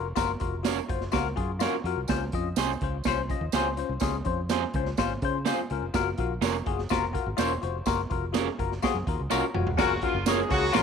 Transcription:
Already playing: F1
0.16 F#1 F4 F#4 A#4, kick, snare, closed hi-hat, tambourine
0.40 F1 F4 F#4 A#4, kick, closed hi-hat
0.63 C#4 F4 F#4 A#4 C#5, snare, closed hi-hat, tambourine
0.89 F#1 F4 F#4 C5, kick, closed hi-hat
1.01 snare
1.12 C#2 F4 F#4 A#4, kick, snare, closed hi-hat, tambourine
1.36 F#2 F4 F#4 G#4, kick, closed hi-hat
1.59 C#4 F4 F#4 A#4 C#5, snare, closed hi-hat, tambourine
1.84 F2 F4 F#4 A#4, closed hi-hat
1.96 C2
2.08 C#2 C#4 F4 C5, kick, snare, closed hi-hat, tambourine
2.32 F2 C#4 F4 D#5, kick, closed hi-hat
2.56 C2 C4 C#4 F4 G#4 C5 C#5, snare, closed hi-hat, tambourine
2.81 C#2 C#4 F4 C5, kick, closed hi-hat
3.04 C2 C#4 F4, kick, snare, closed hi-hat, tambourine
3.08 C5
3.29 C#4 F4 D#5, kick, closed hi-hat
3.41 D#2
3.52 C#2 C4 C#4 F4 G#4 C5, snare, closed hi-hat, tambourine
3.77 C#4 F4 C5, closed hi-hat
3.89 C2
4.00 C#2 C#4 F4 G#4, kick, snare, closed hi-hat, tambourine
4.25 F2 C#4 F4 C5, kick, closed hi-hat
4.49 C4 C#4 F4 G#4 C5, snare, closed hi-hat, tambourine
4.74 C#2 C#4 F4 C5, kick, closed hi-hat
4.86 snare
4.97 G#1 C#4 F4 C5, kick, snare, closed hi-hat, tambourine
5.22 C#3 C#4 F4 C5, kick, closed hi-hat
5.45 C4 C#4 F4 G#4 C5, snare, closed hi-hat, tambourine
5.70 C#2 C#4 F4 A#4, closed hi-hat
5.82 F1
5.94 F#1 F4 F#4 A#4, kick, snare, closed hi-hat, tambourine
6.17 A#1 F4 F#4 A#4, kick, closed hi-hat
6.41 F1 C#4 F4 F#4 A#4 C#5, snare, closed hi-hat, tambourine
6.66 F#1 F4 F#4 G#4, kick, closed hi-hat
6.79 snare
6.89 F1 F4 F#4 A#4, kick, snare, closed hi-hat, tambourine
7.13 F4 F#4 A#4, kick, closed hi-hat
7.26 G#1
7.37 E1 C#4 F4 F#4 A#4 C5 C#5, snare, closed hi-hat, tambourine
7.62 F1 F4 F#4 C5, closed hi-hat
7.86 F#1 F4 F#4 A#4, kick, snare, closed hi-hat, tambourine
8.10 F1 F4 F#4 A#4, kick, closed hi-hat
8.32 C#4 F4 F#4 G#4 A#4 C#5, snare, closed hi-hat, tambourine
8.59 F#1 F4 F#4 A#4, kick, closed hi-hat
8.72 snare
8.82 F4 F#4 G#4, kick, snare, closed hi-hat, tambourine
8.95 F#2
9.07 D#2 F4 F#4 A#4, kick, closed hi-hat
9.20 C#2
9.30 C2 C#4 F4 F#4 A#4 C#5 A#5, snare, tambourine
9.54 F1 F4 F#4 C#5 F#5, mid tom
9.67 floor tom
9.77 F#1 C#3 A#3 C#4 F4 F#4 A#4, kick, snare, crash, tambourine
10.01 C#3 A#3 C#4 F4 F#4 A#4, kick, closed hi-hat
10.14 F#1
10.26 G#3 C#4 F4 F#4 G#4 A#4 C#5, snare, closed hi-hat, tambourine
10.49 C#2 C#3 A#3 C#4 F4 F#4 G#4, kick, closed hi-hat
10.72 A#1 C#3 A#3 C#4 F4 F#4 A#4, snare, closed hi-hat, tambourine

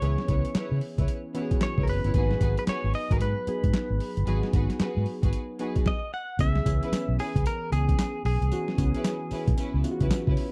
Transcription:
Already playing: E3 B3 C#4 G#4 C#5
0.02 C#2 E3 B3 C#4 E4 G#4 B4 C#5, closed hi-hat
0.18 snare
0.28 C#2 E4 B4 C#5, kick, closed hi-hat
0.45 closed hi-hat
0.55 E4 B4 C#5, muted fingered electric bass stroke, snare, clap, closed hi-hat
0.71 C#3
0.81 open hi-hat
0.98 C#2 E4 B4 C#5, kick, closed hi-hat
1.08 closed hi-hat
1.34 E3 B3 C#4 E4 F#4 B4 C#5, closed hi-hat
1.42 G#4
1.51 kick, closed hi-hat
1.61 C#5, snare, clap, closed hi-hat
1.78 C#2 E4 B4 C#5, kick
1.83 A#4
1.87 F#1 B4, open hi-hat
2.04 G1 E4 B4 C#5, closed hi-hat
2.14 G#1 F#3 A#3 D#4 F#4 G#4 B4, kick, closed hi-hat
2.21 B3
2.31 snare
2.41 G#1 F#4 G#4 B4, kick, closed hi-hat
2.57 B4, closed hi-hat
2.67 F#4 G#4 B4 C#5, muted fingered electric bass stroke, snare, clap, closed hi-hat
2.84 G#1
2.94 D#5, open hi-hat
3.10 G#1 F#4 G#4 A#4 B4, kick, closed hi-hat
3.20 G#2 B4, closed hi-hat
3.47 F#3 B3 D#4 G#4, muted fingered electric bass stroke, closed hi-hat
3.64 G#2, kick, closed hi-hat
3.74 muted fingered electric bass stroke, snare, clap, closed hi-hat
3.90 G#1
4.00 open hi-hat
4.17 G1, closed hi-hat
4.26 G#1 F#3 B3 D#4 F#4 G#4 B4, closed hi-hat
4.43 snare
4.53 G#1 F#4 G#4 B4, kick, closed hi-hat
4.70 snare, closed hi-hat
4.80 F#4 G#4 B4, muted fingered electric bass stroke, snare, clap, closed hi-hat
4.97 G#2
5.06 open hi-hat
5.23 G#1 F#4 G#4 B4, kick, closed hi-hat
5.33 closed hi-hat
5.59 F#3 B3 D#4 F#4 G#4 B4, closed hi-hat
5.76 kick, closed hi-hat
5.86 D#5, kick, snare
6.14 F#5
6.39 C#2 E3 B3 C#4 G#4 E5, kick, closed hi-hat, tambourine
6.55 snare
6.65 C#2 E3 B3 C#4 G#4, kick, closed hi-hat, tambourine
6.82 C#4 E4 B4, closed hi-hat
6.92 muted fingered electric bass stroke, snare, clap, closed hi-hat, tambourine
7.09 B1
7.19 C#4 E4 G#4 B4, open hi-hat, tambourine
7.36 C#2, kick, closed hi-hat
7.46 A#4, closed hi-hat, tambourine
7.72 C#2 E3 B3 C#4 G#4, closed hi-hat, tambourine
7.89 kick, closed hi-hat
7.99 snare, clap, closed hi-hat, tambourine
8.25 B1 G#4, open hi-hat
8.41 C2, closed hi-hat
8.51 E3 B3 C#4 F#4, closed hi-hat, tambourine
8.68 snare
8.78 C#2 E3 B3 C#4 F#4, kick, closed hi-hat, tambourine
8.85 G#4
8.94 C#4 E4 B4, closed hi-hat
9.04 snare, clap, closed hi-hat, tambourine
9.31 C#4 E4 B4, muted fingered electric bass stroke, open hi-hat, tambourine
9.48 B1, kick, closed hi-hat
9.57 C#4 E4 B4, muted fingered electric bass stroke, closed hi-hat, tambourine
9.74 C#2
9.84 E3 B3 C#4 F4, closed hi-hat, tambourine
9.91 F#4
10.00 C#2 C#4 E4 B4, kick, closed hi-hat
10.11 snare, clap, closed hi-hat, tambourine
10.27 C#3 C#4 E4 B4, kick
10.37 open hi-hat

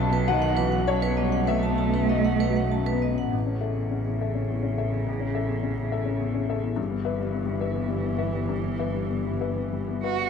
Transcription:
Already playing: B1 F#2 F#3 A5
0.09 B3 B4
0.28 D#3 F#4 D#5 F#5
0.42 F#5
0.48 D#5
0.57 E3 B4
0.68 F#4
0.72 F#5
0.87 F#2 F#3 C#5 A5
1.02 B4
1.08 B3
1.17 G3 D#5
1.28 F#2
1.32 F#5
1.47 B1 A3 B4 E5
1.63 A5
1.69 B3
1.78 A5
1.89 F#2
1.94 B4
2.10 F#4 D#5
2.25 F#5
2.30 D#5
2.40 B4
2.50 F#4
2.56 F#5
2.71 F#2 A5
2.86 B4
2.92 B3
3.02 D#5
3.12 F#2
3.18 F#5
3.32 A1 C#3
3.46 C#4
3.61 A4 E5
3.76 E2
3.91 C#4
4.06 E2
4.21 A4 E5
4.35 C#4
4.49 E2
4.63 C#4
4.78 A4 E5
4.92 E2
5.07 A1
5.20 C#4
5.35 A4 E5
5.48 E2
5.63 C#4
5.77 E2
5.92 A4 E5
6.05 C#4
6.20 E2
6.34 C#4
6.49 A4 E5
6.63 E2
6.76 G1 G2 E3
6.90 B3
7.05 B4 E5
7.19 G3
7.33 B3
7.46 G3
7.60 B4 E5
7.75 B3
7.88 G3
8.03 B3
8.18 B4 E5
8.33 G3
8.49 G2
8.64 B3
8.79 B4 E5
8.94 G3
9.10 B3
9.25 G3
9.41 B4 E5
9.56 B3
9.73 G3
9.88 B3
10.03 F#4 B4 E5
10.19 G3

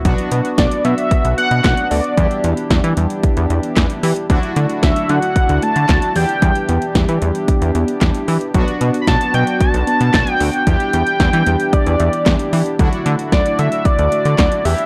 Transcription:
0.05 B1 F#3 B3 D4 F#4, kick, closed hi-hat
0.18 closed hi-hat
0.32 B2 B3, closed hi-hat
0.45 closed hi-hat
0.58 B1 F#3 D5, kick, snare, closed hi-hat
0.71 closed hi-hat
0.85 B2 F#3 E5, closed hi-hat
0.98 closed hi-hat
1.11 kick, closed hi-hat
1.25 B1, closed hi-hat
1.38 B3 F#5, closed hi-hat
1.51 B2, closed hi-hat
1.64 B1 F#3, kick, snare, clap, closed hi-hat
1.77 closed hi-hat
1.91 D2 D5 F#5, open hi-hat
2.04 closed hi-hat
2.17 E2 E3 G3 D4 E4 G4, kick, closed hi-hat
2.31 closed hi-hat
2.44 E2 B3, closed hi-hat
2.57 closed hi-hat
2.70 E2 G3, kick, snare, closed hi-hat
2.84 E3, closed hi-hat
2.97 E2 G3, closed hi-hat
3.10 closed hi-hat
3.23 kick, closed hi-hat
3.37 E2, closed hi-hat
3.50 E2 B3, closed hi-hat
3.63 closed hi-hat
3.76 E2 G3, kick, snare, clap, closed hi-hat
3.90 closed hi-hat
4.03 E3 G4, open hi-hat
4.16 closed hi-hat
4.30 D2 D3 F#3 A3 D4 E4 F#4, kick, closed hi-hat
4.43 closed hi-hat
4.56 D3 A3, closed hi-hat
4.70 closed hi-hat
4.83 D2 F#3 E5, kick, snare, closed hi-hat
4.96 closed hi-hat
5.09 D3 F#3 F#5, closed hi-hat
5.22 closed hi-hat
5.36 kick, closed hi-hat
5.49 D2, closed hi-hat
5.62 A3 A5, closed hi-hat
5.76 D3, closed hi-hat
5.89 D2 F#3, kick, snare, clap, closed hi-hat
6.02 closed hi-hat
6.16 E2 E3 B3 D4 E4 G4 G5, open hi-hat
6.29 closed hi-hat
6.42 E2 G3, kick, closed hi-hat
6.55 closed hi-hat
6.69 E2 B3, closed hi-hat
6.82 closed hi-hat
6.95 E2 G3, kick, snare, closed hi-hat
7.09 E3, closed hi-hat
7.22 E2 G3, closed hi-hat
7.35 closed hi-hat
7.48 kick, closed hi-hat
7.62 E2, closed hi-hat
7.75 E2 B3, closed hi-hat
7.88 closed hi-hat
8.01 E2 G3, kick, snare, clap, closed hi-hat
8.15 closed hi-hat
8.28 E3 G4, open hi-hat
8.41 closed hi-hat
8.54 B1 F#3 B3 D4 F#4, kick, closed hi-hat
8.68 closed hi-hat
8.81 B2 B3, closed hi-hat
8.94 closed hi-hat
9.01 B5
9.07 B1 F#3 A5, kick, snare, closed hi-hat
9.21 closed hi-hat
9.34 B2 F#3 G5, closed hi-hat
9.47 closed hi-hat
9.61 A5, kick, closed hi-hat
9.74 B1, closed hi-hat
9.87 B3, closed hi-hat
10.01 B2, closed hi-hat
10.14 B1 F#3, kick, snare, clap, closed hi-hat
10.27 closed hi-hat
10.32 G5
10.40 D2 F#5, open hi-hat
10.53 closed hi-hat
10.67 E2 E3 G3 D4 E4 G4 G5, kick, closed hi-hat
10.80 closed hi-hat
10.93 E2 B3, closed hi-hat
11.07 closed hi-hat
11.20 E2 G3, kick, snare, closed hi-hat
11.33 E3, closed hi-hat
11.46 E2 G3, closed hi-hat
11.60 closed hi-hat
11.73 D5, kick, closed hi-hat
11.86 E2, closed hi-hat
12.00 E2 B3, closed hi-hat
12.13 closed hi-hat
12.26 E2 G3, kick, snare, clap, closed hi-hat
12.39 closed hi-hat
12.53 E3 G4, open hi-hat
12.66 closed hi-hat
12.79 D2 D3 F#3 A3 D4 E4 F#4, kick, closed hi-hat
12.93 closed hi-hat
13.06 D3 A3, closed hi-hat
13.19 closed hi-hat
13.32 D2 F#3 D5, kick, snare, closed hi-hat
13.46 closed hi-hat
13.59 D3 F#3 E5, closed hi-hat
13.72 closed hi-hat
13.85 D5, kick, closed hi-hat
13.99 D2, closed hi-hat
14.12 A3, closed hi-hat
14.25 D3, closed hi-hat
14.38 D2 F#3, kick, snare, clap, closed hi-hat
14.52 closed hi-hat
14.65 E2 E3 B3 D4 E4 G4 E5, open hi-hat
14.78 closed hi-hat

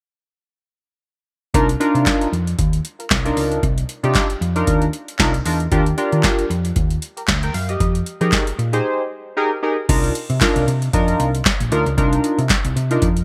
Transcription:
1.54 C2 D4 D#4 F4 A#4, kick, closed hi-hat
1.69 closed hi-hat
1.80 D4 D#4 F4 A#4, closed hi-hat
1.95 C3, closed hi-hat
2.06 kick, snare, clap, closed hi-hat
2.21 closed hi-hat
2.33 F2, closed hi-hat
2.47 closed hi-hat
2.59 D#2, kick, closed hi-hat
2.73 closed hi-hat
2.85 closed hi-hat
2.99 F4 A#4, closed hi-hat
3.10 C2 F4 A#4, kick, snare, clap, closed hi-hat
3.25 D4 D#4 F4 A#4, closed hi-hat
3.37 C#2, open hi-hat
3.52 closed hi-hat
3.63 C2, kick, closed hi-hat
3.78 closed hi-hat
3.89 closed hi-hat
4.03 C3 D4 D#4 F4 G4, closed hi-hat
4.15 kick, snare, clap, closed hi-hat
4.30 closed hi-hat
4.41 F2, closed hi-hat
4.56 D4 D#4 F4 A#4, closed hi-hat
4.67 D#2, kick, closed hi-hat
4.82 closed hi-hat
4.93 closed hi-hat
5.08 closed hi-hat
5.19 C2 D4 D#4 F4 A#4, kick, snare, clap, closed hi-hat
5.34 closed hi-hat
5.45 E2 D4 D#4 F4 A#4, open hi-hat
5.60 closed hi-hat
5.72 D#2 D4 F4 G4 A#4, kick, closed hi-hat
5.86 closed hi-hat
5.98 D4 F4 G4 A#4, closed hi-hat
6.12 D#3, closed hi-hat
6.23 kick, snare, clap, closed hi-hat
6.39 closed hi-hat
6.50 F2, closed hi-hat
6.65 closed hi-hat
6.76 D#2, kick, closed hi-hat
6.91 closed hi-hat
7.02 closed hi-hat
7.17 G4 A#4, closed hi-hat
7.28 D2, kick, snare, clap, closed hi-hat
7.43 A#4 G5, closed hi-hat
7.54 F#2 F5, open hi-hat
7.69 G4 D#5, closed hi-hat
7.80 F2, kick, closed hi-hat
7.95 closed hi-hat
8.06 closed hi-hat
8.21 F3 D#4 G4 G#4 A#4, closed hi-hat
8.32 kick, snare, clap, closed hi-hat
8.47 closed hi-hat
8.59 A#2, closed hi-hat
8.73 D#4 G4 G#4 C5, closed hi-hat
9.37 D#4 G4 G#4 A#4
9.63 D#4 G4 G#4 A#4
9.89 C2 D4 D#4 F4 A#4, kick, closed hi-hat, crash
10.04 closed hi-hat
10.15 closed hi-hat
10.30 C3, closed hi-hat
10.41 D4 D#4 F4 A#4, kick, snare, clap, closed hi-hat
10.56 C2, closed hi-hat
10.67 C3, closed hi-hat
10.82 closed hi-hat
10.93 F2 D4 D#4 F4 A#4, kick, closed hi-hat
11.08 closed hi-hat
11.20 C2, closed hi-hat
11.35 closed hi-hat
11.45 kick, snare, clap, closed hi-hat
11.60 A#1, closed hi-hat
11.72 D2 D4 D#4 F4 A#4, closed hi-hat
11.86 C#2, closed hi-hat
11.97 C2 D4 D#4 F4 A#4, kick, closed hi-hat
12.13 closed hi-hat
12.24 closed hi-hat
12.38 C3, closed hi-hat
12.49 kick, snare, clap, closed hi-hat
12.65 C2, closed hi-hat
12.76 C3, closed hi-hat
12.91 D4 D#4 F4 A#4, closed hi-hat
13.02 F2, kick, closed hi-hat
13.17 closed hi-hat

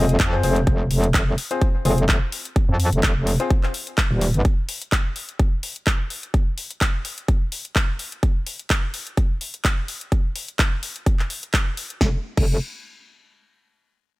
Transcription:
Already playing: F1 C4 F4 G#4 D#5
0.09 closed hi-hat
0.20 F2, kick, clap, closed hi-hat
0.33 C4 F4 G#4 C5
0.43 F1 C4 F4 G#4 C5, open hi-hat
0.56 closed hi-hat
0.67 F1, kick, closed hi-hat
0.91 F1, open hi-hat
1.04 closed hi-hat
1.14 F1, kick, clap, closed hi-hat
1.38 open hi-hat
1.51 C4 F4 G#4 C5, closed hi-hat
1.61 kick, closed hi-hat
1.85 F1 C4 F4 G#4 C5, open hi-hat
1.98 closed hi-hat
2.09 kick, clap, closed hi-hat
2.32 open hi-hat
2.45 closed hi-hat
2.56 kick, closed hi-hat
2.69 F2
2.80 open hi-hat
2.93 F1, closed hi-hat
3.03 kick, clap, closed hi-hat
3.16 F1
3.27 open hi-hat
3.40 C4 F4 G#4 C5, closed hi-hat
3.50 kick, closed hi-hat
3.63 clap
3.74 open hi-hat
3.87 closed hi-hat
3.98 kick, clap, closed hi-hat
4.11 D#1
4.21 open hi-hat
4.34 G1, closed hi-hat
4.45 kick, closed hi-hat
4.69 open hi-hat
4.82 closed hi-hat
4.92 kick, clap, closed hi-hat
5.16 open hi-hat
5.29 closed hi-hat
5.39 kick, closed hi-hat
5.63 open hi-hat
5.76 closed hi-hat
5.87 kick, clap, closed hi-hat
6.10 open hi-hat
6.23 closed hi-hat
6.34 kick, closed hi-hat
6.58 open hi-hat
6.71 closed hi-hat
6.81 kick, clap, closed hi-hat
7.05 open hi-hat
7.18 closed hi-hat
7.28 kick, closed hi-hat
7.52 open hi-hat
7.65 closed hi-hat
7.76 kick, clap, closed hi-hat
7.99 open hi-hat
8.12 closed hi-hat
8.23 kick, closed hi-hat
8.47 open hi-hat
8.59 closed hi-hat
8.70 kick, clap, closed hi-hat
8.94 open hi-hat
9.07 closed hi-hat
9.17 kick, closed hi-hat
9.41 open hi-hat
9.54 closed hi-hat
9.65 kick, clap, closed hi-hat
9.88 open hi-hat
10.01 closed hi-hat
10.12 kick, closed hi-hat
10.36 open hi-hat
10.48 closed hi-hat
10.59 kick, clap, closed hi-hat
10.83 open hi-hat
10.96 closed hi-hat
11.06 kick, closed hi-hat
11.19 clap
11.30 open hi-hat
11.43 closed hi-hat
11.54 kick, clap, closed hi-hat
11.77 open hi-hat
11.90 closed hi-hat
12.01 F1, kick, snare
12.37 F1, kick, crash

